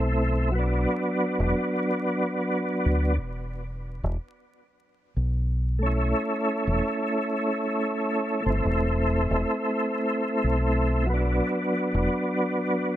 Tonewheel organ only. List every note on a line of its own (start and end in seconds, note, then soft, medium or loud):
0.00 0.49 A3 medium
0.00 0.51 C4 medium
0.00 0.53 E4 medium
0.51 3.13 F#3 medium
0.55 3.15 B3 medium
0.55 3.17 D4 medium
5.79 8.41 A3 medium
5.79 8.43 C#4 medium
5.86 8.44 E4 medium
8.42 11.04 A3 medium
8.42 11.06 C4 medium
8.50 11.08 E4 medium
11.06 12.96 F#3 medium
11.06 12.96 B3 medium
11.14 12.96 D4 medium